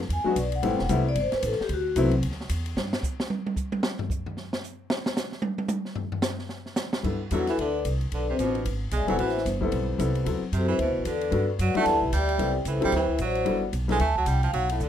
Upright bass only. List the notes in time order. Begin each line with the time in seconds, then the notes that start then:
0.09 E2
0.25 muted upright bass stroke
0.36 B1
0.63 A1
0.71 G1
0.80 E1
0.89 C2
1.15 G1
1.33 muted upright bass stroke
1.43 A1
1.60 muted upright bass stroke
1.69 D2
1.96 C2
2.22 D2
2.49 E2
2.76 G2
7.04 G2
7.31 E2
7.58 D2
7.85 C2
8.12 B1
8.38 A1
8.65 G#1
8.92 B1
9.01 G#1
9.10 E1
9.19 A1
9.45 G1
9.72 B1
9.99 C2
10.26 D2
10.41 muted upright bass stroke
10.52 F#2
10.79 D2
10.89 C2
10.97 A1
11.05 E2
11.32 G2
11.59 F#2
11.75 muted upright bass stroke
11.85 E2
11.94 D2
12.03 B1
12.12 D2
12.39 C2
12.65 C#2
12.76 C2
12.85 A1
12.92 D2
13.19 A1
13.46 G1
13.73 B1
14.00 D2
14.26 C2
14.53 B1
14.80 D2